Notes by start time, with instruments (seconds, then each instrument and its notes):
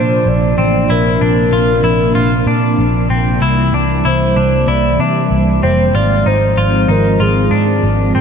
Already playing: picked electric bass A#2, string machine C3 F3 A#3 C4 D4, clean electric guitar D4, soft synth lead C5
0.26 picked electric bass A#1, soft synth lead D5
0.58 picked electric bass A1, clean electric guitar C4
0.90 picked electric bass A#1, clean electric guitar E4, soft synth lead A#4
1.21 picked electric bass A#1, clean electric guitar D4
1.52 picked electric bass A#1, clean electric guitar F4
1.84 picked electric bass A#1, clean electric guitar E4
2.15 picked electric bass A#1, clean electric guitar F4
2.46 picked electric bass A#2, clean electric guitar D4
2.79 picked electric bass A#1
3.10 picked electric bass A#1, clean electric guitar C4
3.41 picked electric bass C2, string machine E3 G3 E4, clean electric guitar E4
3.73 picked electric bass C2, clean electric guitar D4
4.05 picked electric bass C2, clean electric guitar E4, soft synth lead C5
4.36 picked electric bass C2, clean electric guitar D4
4.67 picked electric bass C2, clean electric guitar E4, soft synth lead D5
4.99 picked electric bass C3, clean electric guitar D4, soft synth lead E5
5.31 picked electric bass C2
5.63 picked electric bass F1, clean electric guitar C4, soft synth lead C5
5.94 picked electric bass G#1, string machine D#3 F3 G#3 C4 F4, clean electric guitar F4, soft synth lead D5
6.26 picked electric bass G#1, clean electric guitar D#4, soft synth lead C5
6.57 picked electric bass G#1, clean electric guitar F4
6.88 picked electric bass G#1, clean electric guitar D#4, soft synth lead A#4
7.20 picked electric bass G#1, clean electric guitar F4, soft synth lead G#4
7.51 picked electric bass G#2, clean electric guitar D4
7.83 picked electric bass G#1
8.15 picked electric bass G#1, clean electric guitar C4